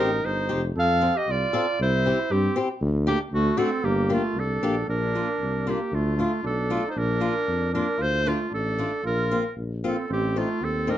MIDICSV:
0, 0, Header, 1, 5, 480
1, 0, Start_track
1, 0, Key_signature, -2, "minor"
1, 0, Tempo, 514580
1, 702, Time_signature, 2, 2, 24, 8
1, 3577, Tempo, 521286
1, 4543, Key_signature, -2, "major"
1, 10155, End_track
2, 0, Start_track
2, 0, Title_t, "Clarinet"
2, 0, Program_c, 0, 71
2, 0, Note_on_c, 0, 70, 107
2, 237, Note_on_c, 0, 72, 95
2, 251, Note_off_c, 0, 70, 0
2, 592, Note_off_c, 0, 72, 0
2, 741, Note_on_c, 0, 77, 118
2, 1095, Note_on_c, 0, 75, 96
2, 1109, Note_off_c, 0, 77, 0
2, 1225, Note_on_c, 0, 74, 109
2, 1239, Note_off_c, 0, 75, 0
2, 1690, Note_off_c, 0, 74, 0
2, 1700, Note_on_c, 0, 72, 113
2, 2158, Note_on_c, 0, 67, 96
2, 2172, Note_off_c, 0, 72, 0
2, 2394, Note_off_c, 0, 67, 0
2, 2869, Note_on_c, 0, 67, 110
2, 2974, Note_off_c, 0, 67, 0
2, 3119, Note_on_c, 0, 66, 112
2, 3343, Note_on_c, 0, 69, 95
2, 3357, Note_off_c, 0, 66, 0
2, 3588, Note_on_c, 0, 67, 103
2, 3602, Note_off_c, 0, 69, 0
2, 3824, Note_off_c, 0, 67, 0
2, 3853, Note_on_c, 0, 65, 95
2, 4094, Note_on_c, 0, 69, 92
2, 4107, Note_off_c, 0, 65, 0
2, 4548, Note_off_c, 0, 69, 0
2, 4553, Note_on_c, 0, 70, 94
2, 5290, Note_on_c, 0, 67, 75
2, 5303, Note_off_c, 0, 70, 0
2, 5520, Note_on_c, 0, 65, 82
2, 5533, Note_off_c, 0, 67, 0
2, 5752, Note_off_c, 0, 65, 0
2, 5766, Note_on_c, 0, 65, 85
2, 5975, Note_off_c, 0, 65, 0
2, 5997, Note_on_c, 0, 69, 92
2, 6373, Note_off_c, 0, 69, 0
2, 6403, Note_on_c, 0, 72, 68
2, 6476, Note_on_c, 0, 70, 106
2, 6490, Note_off_c, 0, 72, 0
2, 7168, Note_off_c, 0, 70, 0
2, 7174, Note_on_c, 0, 70, 101
2, 7432, Note_on_c, 0, 72, 123
2, 7445, Note_off_c, 0, 70, 0
2, 7669, Note_on_c, 0, 65, 99
2, 7683, Note_off_c, 0, 72, 0
2, 7897, Note_off_c, 0, 65, 0
2, 7911, Note_on_c, 0, 69, 94
2, 8351, Note_off_c, 0, 69, 0
2, 8390, Note_on_c, 0, 70, 98
2, 8826, Note_off_c, 0, 70, 0
2, 9133, Note_on_c, 0, 69, 68
2, 9341, Note_off_c, 0, 69, 0
2, 9372, Note_on_c, 0, 67, 92
2, 9599, Note_on_c, 0, 65, 91
2, 9613, Note_off_c, 0, 67, 0
2, 9845, Note_on_c, 0, 69, 97
2, 9859, Note_off_c, 0, 65, 0
2, 10080, Note_on_c, 0, 70, 90
2, 10094, Note_off_c, 0, 69, 0
2, 10155, Note_off_c, 0, 70, 0
2, 10155, End_track
3, 0, Start_track
3, 0, Title_t, "Steel-string acoustic guitar"
3, 0, Program_c, 1, 25
3, 457, Note_on_c, 1, 63, 65
3, 457, Note_on_c, 1, 67, 72
3, 462, Note_on_c, 1, 60, 74
3, 567, Note_off_c, 1, 67, 0
3, 568, Note_off_c, 1, 63, 0
3, 570, Note_off_c, 1, 60, 0
3, 940, Note_on_c, 1, 65, 55
3, 946, Note_on_c, 1, 69, 74
3, 952, Note_on_c, 1, 60, 66
3, 1053, Note_off_c, 1, 65, 0
3, 1056, Note_off_c, 1, 69, 0
3, 1059, Note_off_c, 1, 60, 0
3, 1428, Note_on_c, 1, 69, 80
3, 1436, Note_on_c, 1, 60, 70
3, 1437, Note_on_c, 1, 65, 62
3, 1539, Note_off_c, 1, 69, 0
3, 1542, Note_off_c, 1, 65, 0
3, 1543, Note_off_c, 1, 60, 0
3, 1918, Note_on_c, 1, 60, 62
3, 1920, Note_on_c, 1, 64, 70
3, 1927, Note_on_c, 1, 67, 75
3, 2022, Note_off_c, 1, 60, 0
3, 2023, Note_off_c, 1, 64, 0
3, 2027, Note_off_c, 1, 67, 0
3, 2386, Note_on_c, 1, 60, 81
3, 2392, Note_on_c, 1, 64, 62
3, 2394, Note_on_c, 1, 67, 78
3, 2495, Note_off_c, 1, 60, 0
3, 2496, Note_off_c, 1, 64, 0
3, 2496, Note_off_c, 1, 67, 0
3, 2861, Note_on_c, 1, 62, 73
3, 2862, Note_on_c, 1, 67, 91
3, 2864, Note_on_c, 1, 57, 62
3, 2968, Note_off_c, 1, 62, 0
3, 2968, Note_off_c, 1, 67, 0
3, 2970, Note_off_c, 1, 57, 0
3, 3329, Note_on_c, 1, 62, 75
3, 3335, Note_on_c, 1, 57, 75
3, 3335, Note_on_c, 1, 66, 94
3, 3441, Note_off_c, 1, 62, 0
3, 3443, Note_off_c, 1, 66, 0
3, 3444, Note_off_c, 1, 57, 0
3, 3814, Note_on_c, 1, 62, 67
3, 3820, Note_on_c, 1, 58, 70
3, 3821, Note_on_c, 1, 67, 71
3, 3924, Note_off_c, 1, 62, 0
3, 3926, Note_off_c, 1, 58, 0
3, 3926, Note_off_c, 1, 67, 0
3, 4307, Note_on_c, 1, 58, 78
3, 4311, Note_on_c, 1, 62, 72
3, 4314, Note_on_c, 1, 67, 86
3, 4414, Note_off_c, 1, 62, 0
3, 4414, Note_off_c, 1, 67, 0
3, 4415, Note_off_c, 1, 58, 0
3, 4789, Note_on_c, 1, 58, 58
3, 4794, Note_on_c, 1, 65, 62
3, 4796, Note_on_c, 1, 62, 55
3, 4896, Note_off_c, 1, 65, 0
3, 4897, Note_off_c, 1, 58, 0
3, 4899, Note_off_c, 1, 62, 0
3, 5264, Note_on_c, 1, 65, 67
3, 5267, Note_on_c, 1, 58, 62
3, 5269, Note_on_c, 1, 62, 64
3, 5373, Note_off_c, 1, 65, 0
3, 5374, Note_off_c, 1, 58, 0
3, 5375, Note_off_c, 1, 62, 0
3, 5743, Note_on_c, 1, 57, 56
3, 5750, Note_on_c, 1, 62, 52
3, 5750, Note_on_c, 1, 65, 73
3, 5850, Note_off_c, 1, 57, 0
3, 5853, Note_off_c, 1, 62, 0
3, 5853, Note_off_c, 1, 65, 0
3, 6217, Note_on_c, 1, 57, 74
3, 6217, Note_on_c, 1, 62, 64
3, 6222, Note_on_c, 1, 65, 71
3, 6324, Note_off_c, 1, 62, 0
3, 6325, Note_off_c, 1, 65, 0
3, 6326, Note_off_c, 1, 57, 0
3, 6678, Note_on_c, 1, 58, 63
3, 6681, Note_on_c, 1, 62, 54
3, 6686, Note_on_c, 1, 65, 76
3, 6794, Note_off_c, 1, 58, 0
3, 6794, Note_off_c, 1, 62, 0
3, 6795, Note_off_c, 1, 65, 0
3, 7181, Note_on_c, 1, 58, 70
3, 7181, Note_on_c, 1, 62, 63
3, 7187, Note_on_c, 1, 65, 74
3, 7281, Note_off_c, 1, 62, 0
3, 7282, Note_off_c, 1, 65, 0
3, 7283, Note_off_c, 1, 58, 0
3, 7655, Note_on_c, 1, 57, 63
3, 7659, Note_on_c, 1, 62, 62
3, 7663, Note_on_c, 1, 65, 71
3, 7759, Note_off_c, 1, 57, 0
3, 7759, Note_off_c, 1, 62, 0
3, 7760, Note_off_c, 1, 65, 0
3, 8135, Note_on_c, 1, 57, 62
3, 8142, Note_on_c, 1, 62, 57
3, 8142, Note_on_c, 1, 65, 66
3, 8242, Note_off_c, 1, 65, 0
3, 8243, Note_off_c, 1, 57, 0
3, 8244, Note_off_c, 1, 62, 0
3, 8618, Note_on_c, 1, 60, 57
3, 8623, Note_on_c, 1, 65, 70
3, 8624, Note_on_c, 1, 58, 57
3, 8726, Note_off_c, 1, 60, 0
3, 8728, Note_off_c, 1, 65, 0
3, 8730, Note_off_c, 1, 58, 0
3, 9106, Note_on_c, 1, 60, 61
3, 9108, Note_on_c, 1, 65, 77
3, 9114, Note_on_c, 1, 58, 64
3, 9212, Note_off_c, 1, 60, 0
3, 9212, Note_off_c, 1, 65, 0
3, 9216, Note_off_c, 1, 58, 0
3, 9585, Note_on_c, 1, 60, 54
3, 9590, Note_on_c, 1, 63, 69
3, 9591, Note_on_c, 1, 57, 66
3, 9692, Note_off_c, 1, 60, 0
3, 9692, Note_off_c, 1, 63, 0
3, 9694, Note_off_c, 1, 57, 0
3, 10057, Note_on_c, 1, 60, 64
3, 10062, Note_on_c, 1, 63, 71
3, 10063, Note_on_c, 1, 57, 67
3, 10155, Note_off_c, 1, 57, 0
3, 10155, Note_off_c, 1, 60, 0
3, 10155, Note_off_c, 1, 63, 0
3, 10155, End_track
4, 0, Start_track
4, 0, Title_t, "Trumpet"
4, 0, Program_c, 2, 56
4, 0, Note_on_c, 2, 63, 104
4, 214, Note_off_c, 2, 63, 0
4, 214, Note_on_c, 2, 63, 84
4, 580, Note_off_c, 2, 63, 0
4, 725, Note_on_c, 2, 69, 97
4, 1075, Note_on_c, 2, 67, 84
4, 1089, Note_off_c, 2, 69, 0
4, 1211, Note_on_c, 2, 65, 87
4, 1225, Note_off_c, 2, 67, 0
4, 1684, Note_off_c, 2, 65, 0
4, 1695, Note_on_c, 2, 64, 94
4, 2164, Note_on_c, 2, 60, 81
4, 2178, Note_off_c, 2, 64, 0
4, 2397, Note_off_c, 2, 60, 0
4, 2863, Note_on_c, 2, 58, 70
4, 2969, Note_off_c, 2, 58, 0
4, 3108, Note_on_c, 2, 57, 87
4, 3344, Note_on_c, 2, 60, 97
4, 3358, Note_off_c, 2, 57, 0
4, 3581, Note_on_c, 2, 58, 90
4, 3594, Note_off_c, 2, 60, 0
4, 3820, Note_off_c, 2, 58, 0
4, 3839, Note_on_c, 2, 57, 62
4, 4078, Note_on_c, 2, 62, 79
4, 4092, Note_off_c, 2, 57, 0
4, 4543, Note_off_c, 2, 62, 0
4, 4548, Note_on_c, 2, 62, 91
4, 5277, Note_on_c, 2, 58, 68
4, 5291, Note_off_c, 2, 62, 0
4, 5521, Note_on_c, 2, 57, 74
4, 5535, Note_off_c, 2, 58, 0
4, 5719, Note_off_c, 2, 57, 0
4, 5724, Note_on_c, 2, 57, 71
4, 5953, Note_off_c, 2, 57, 0
4, 5974, Note_on_c, 2, 62, 82
4, 6361, Note_off_c, 2, 62, 0
4, 6379, Note_on_c, 2, 63, 71
4, 6456, Note_on_c, 2, 62, 85
4, 6469, Note_off_c, 2, 63, 0
4, 7156, Note_off_c, 2, 62, 0
4, 7162, Note_on_c, 2, 62, 83
4, 7397, Note_on_c, 2, 65, 91
4, 7410, Note_off_c, 2, 62, 0
4, 7630, Note_on_c, 2, 57, 74
4, 7644, Note_off_c, 2, 65, 0
4, 7857, Note_off_c, 2, 57, 0
4, 7863, Note_on_c, 2, 62, 65
4, 8325, Note_off_c, 2, 62, 0
4, 8364, Note_on_c, 2, 65, 90
4, 8812, Note_off_c, 2, 65, 0
4, 9134, Note_on_c, 2, 60, 68
4, 9328, Note_off_c, 2, 60, 0
4, 9334, Note_on_c, 2, 60, 83
4, 9598, Note_on_c, 2, 57, 66
4, 9612, Note_off_c, 2, 60, 0
4, 9825, Note_on_c, 2, 60, 77
4, 9839, Note_off_c, 2, 57, 0
4, 10081, Note_on_c, 2, 62, 69
4, 10095, Note_off_c, 2, 60, 0
4, 10155, Note_off_c, 2, 62, 0
4, 10155, End_track
5, 0, Start_track
5, 0, Title_t, "Tuba"
5, 0, Program_c, 3, 58
5, 0, Note_on_c, 3, 33, 85
5, 199, Note_off_c, 3, 33, 0
5, 217, Note_on_c, 3, 31, 76
5, 437, Note_off_c, 3, 31, 0
5, 477, Note_on_c, 3, 29, 85
5, 687, Note_off_c, 3, 29, 0
5, 706, Note_on_c, 3, 41, 98
5, 1022, Note_off_c, 3, 41, 0
5, 1187, Note_on_c, 3, 36, 82
5, 1348, Note_off_c, 3, 36, 0
5, 1678, Note_on_c, 3, 36, 108
5, 1987, Note_off_c, 3, 36, 0
5, 2156, Note_on_c, 3, 43, 99
5, 2310, Note_off_c, 3, 43, 0
5, 2623, Note_on_c, 3, 38, 123
5, 2932, Note_off_c, 3, 38, 0
5, 3100, Note_on_c, 3, 38, 106
5, 3256, Note_off_c, 3, 38, 0
5, 3575, Note_on_c, 3, 31, 108
5, 3889, Note_off_c, 3, 31, 0
5, 4043, Note_on_c, 3, 36, 80
5, 4271, Note_off_c, 3, 36, 0
5, 4296, Note_on_c, 3, 34, 73
5, 4515, Note_off_c, 3, 34, 0
5, 4538, Note_on_c, 3, 34, 93
5, 4854, Note_off_c, 3, 34, 0
5, 5018, Note_on_c, 3, 36, 76
5, 5332, Note_off_c, 3, 36, 0
5, 5496, Note_on_c, 3, 38, 97
5, 5808, Note_off_c, 3, 38, 0
5, 5972, Note_on_c, 3, 35, 80
5, 6284, Note_off_c, 3, 35, 0
5, 6456, Note_on_c, 3, 34, 95
5, 6764, Note_off_c, 3, 34, 0
5, 6931, Note_on_c, 3, 41, 83
5, 7240, Note_off_c, 3, 41, 0
5, 7403, Note_on_c, 3, 38, 92
5, 7716, Note_off_c, 3, 38, 0
5, 7888, Note_on_c, 3, 33, 83
5, 8203, Note_off_c, 3, 33, 0
5, 8372, Note_on_c, 3, 34, 89
5, 8688, Note_off_c, 3, 34, 0
5, 8855, Note_on_c, 3, 34, 80
5, 9170, Note_off_c, 3, 34, 0
5, 9340, Note_on_c, 3, 33, 96
5, 9652, Note_off_c, 3, 33, 0
5, 9817, Note_on_c, 3, 39, 80
5, 10128, Note_off_c, 3, 39, 0
5, 10155, End_track
0, 0, End_of_file